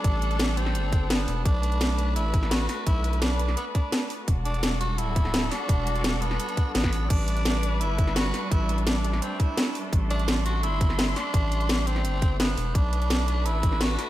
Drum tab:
CC |----------------|----------------|----------------|----------------|
HH |x-xxx-x-x-x-x-o-|x-xxx-x-x-x-x-o-|x-xxx-x-x-x-x-o-|x-xxx-x-x-x-x-o-|
SD |----o--o----o---|----o------oo-o-|----o--o----o---|----o------oo-o-|
BD |o---------o-----|o---------o-----|o---------o-----|o---------o-----|

CC |----------------|x---------------|----------------|----------------|
HH |x-xxx-x-xxx-x-o-|x-xxx-x-x-x-x-o-|x-xxx-x-x-x-x-o-|x-xxx-x-x-x-x-o-|
SD |----o--o----oo--|----o------oo-o-|----o--o----o---|----o------oo-o-|
BD |o---------o--o--|o---------o-----|o---------o-----|o---------o-----|

CC |----------------|----------------|
HH |x-xxx-x-x-x-x-o-|x-xxx-x-x-x-x-o-|
SD |----o--o----o---|----o------oo-o-|
BD |o---------o-----|o---------o-----|